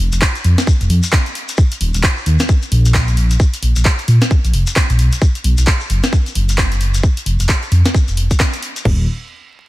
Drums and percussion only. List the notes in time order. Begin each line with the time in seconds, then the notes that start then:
0.12 closed hi-hat, shekere
0.22 kick, clap, shekere
0.35 closed hi-hat, shekere
0.44 open hi-hat
0.58 snare, closed hi-hat, shekere
0.67 kick, shekere
0.81 closed hi-hat, shekere
0.90 open hi-hat
1.03 closed hi-hat, shekere
1.12 kick, clap, snare, shekere
1.26 closed hi-hat, shekere
1.35 open hi-hat
1.49 closed hi-hat, shekere
1.57 kick, shekere
1.72 closed hi-hat, shekere
1.81 open hi-hat
1.94 closed hi-hat, shekere
2.03 kick, clap, shekere
2.17 shekere
2.26 open hi-hat
2.40 snare, closed hi-hat, shekere
2.49 kick, shekere
2.62 closed hi-hat, shekere
2.72 open hi-hat
2.85 closed hi-hat, shekere
2.94 kick, clap, snare, shekere
3.07 closed hi-hat, shekere
3.17 open hi-hat
3.30 closed hi-hat, shekere
3.40 kick, shekere
3.54 closed hi-hat, shekere
3.63 open hi-hat
3.76 closed hi-hat, shekere
3.85 kick, clap, shekere
3.99 closed hi-hat, shekere
4.08 open hi-hat
4.22 snare, closed hi-hat, shekere
4.31 kick, shekere
4.44 closed hi-hat, shekere
4.53 open hi-hat
4.67 closed hi-hat, shekere
4.76 kick, clap, snare, shekere
4.90 closed hi-hat, shekere
4.99 open hi-hat
5.12 closed hi-hat, shekere
5.22 kick, shekere
5.35 closed hi-hat, shekere
5.44 open hi-hat
5.58 closed hi-hat, shekere
5.67 kick, clap, shekere
5.80 shekere
5.90 open hi-hat
6.04 snare, closed hi-hat, shekere
6.13 kick, shekere
6.26 closed hi-hat, shekere
6.35 open hi-hat
6.49 closed hi-hat, shekere
6.58 kick, clap, snare
6.72 closed hi-hat, shekere
6.81 open hi-hat
6.94 closed hi-hat, shekere
7.03 kick, shekere
7.17 closed hi-hat, shekere
7.26 open hi-hat
7.40 closed hi-hat, shekere
7.49 kick, clap, shekere
7.63 closed hi-hat, shekere
7.72 open hi-hat
7.85 snare, closed hi-hat, shekere
7.94 kick, shekere
8.08 closed hi-hat, shekere
8.17 open hi-hat
8.31 kick, closed hi-hat, shekere
8.40 kick, clap, snare, shekere
8.53 closed hi-hat, shekere
8.63 open hi-hat
8.76 closed hi-hat, shekere
8.85 kick, floor tom, crash